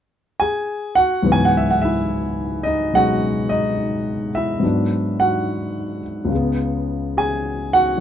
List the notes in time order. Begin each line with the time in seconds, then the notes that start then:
0.40 G#4 G#5
0.95 F#4 F#5
1.23 C#2 G#2 E3 F#3 B3
1.27 F#4
1.32 G#5
1.45 F#5
1.57 E5
1.71 F#5
1.82 E4 E5
2.63 D#4 D#5
2.93 B2 F#3 G#3 C#4 F#4 G#4 F#5
3.49 D#4 D#5
4.35 E4 E5
4.60 G#2 F#3 B3
4.64 D4
5.20 F#4 F#5
6.25 C#2 C#3
6.33 G#3 B3
7.17 G#4 G#5
7.73 F#4 F#5